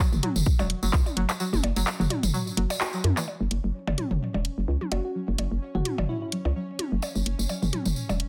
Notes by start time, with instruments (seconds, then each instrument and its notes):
0.12 fm bass F#1, mid tom, tambourine
0.23 synth pluck F#3, closed hi-hat, high tom
0.36 fm bass F#1, mid tom, tambourine
0.46 kick, tambourine
0.59 fm bass E1, synth pluck F#3, tambourine, percussion blips
0.70 closed hi-hat
0.83 fm bass F#1, synth pluck F#3, tambourine
0.93 fm bass C#2, kick, clap, tambourine
1.06 high tom, tambourine, percussion blips
1.17 fm bass F#1, synth pluck F#3, closed hi-hat
1.29 clap, tambourine
1.40 synth pluck F#3, tambourine
1.53 fm bass F#1, high tom, tambourine
1.63 fm bass F#1, closed hi-hat, percussion blips
1.76 fm bass F#1, synth pluck F#3, closed hi-hat, tambourine
1.87 clap, tambourine
2.00 fm bass F#1, synth pluck F#3, mid tom, tambourine
2.10 closed hi-hat, high tom, percussion blips
2.23 fm bass F#1, closed hi-hat, mid tom, tambourine
2.34 synth pluck F#3, tambourine
2.47 tambourine
2.57 fm bass F#1, synth pluck F#3, closed hi-hat
2.70 tambourine, percussion blips
2.81 synth pluck F#4, clap, tambourine
2.93 synth pluck F#3, tambourine
3.04 fm bass F#2, closed hi-hat, high tom
3.17 synth pluck E3, clap, tambourine, percussion blips
3.28 synth texture C#4 C#5, percussion blips
3.40 fm bass F#1, synth pluck F#3
3.51 fm bass F#1, closed hi-hat
3.64 fm bass F#1, synth pluck F#3
3.87 fm bass F#1, mid tom, percussion blips
3.98 synth pluck F#3, closed hi-hat, high tom
4.11 fm bass F#1, mid tom
4.21 synth pluck F#3
4.34 fm bass E1, percussion blips
4.45 closed hi-hat
4.58 fm bass F#1, synth pluck F#3
4.68 fm bass C#2
4.81 synth pluck F#3, high tom
4.92 fm bass F#1, soft synth lead F#4, closed hi-hat, percussion blips
5.05 soft synth lead F#4
5.15 synth pluck F#3
5.28 fm bass F#1
5.38 fm bass F#1, synth pluck F#3, closed hi-hat, percussion blips
5.52 fm bass F#1
5.75 fm bass F#1, synth pluck F#3, soft synth lead F#4, mid tom
5.85 closed hi-hat, high tom
5.98 fm bass F#1, synth pluck F#3, mid tom, percussion blips
6.09 soft synth lead E4
6.22 soft synth lead E4
6.32 synth pluck F#3, closed hi-hat
6.45 fm bass C#2, percussion blips
6.56 synth pluck F#3
6.79 closed hi-hat, high tom
6.92 fm bass F#1, synth pluck F#3
7.02 tambourine, percussion blips
7.15 fm bass F#1, synth pluck F#3, tambourine
7.26 fm bass F#1, closed hi-hat
7.39 fm bass F#1, tambourine
7.49 synth pluck F#3, tambourine, percussion blips
7.62 fm bass F#1, mid tom, tambourine
7.73 synth pluck F#3, closed hi-hat, high tom
7.85 fm bass F#1, mid tom, tambourine
7.96 tambourine
8.09 fm bass E1, synth pluck F#3, tambourine, percussion blips
8.20 closed hi-hat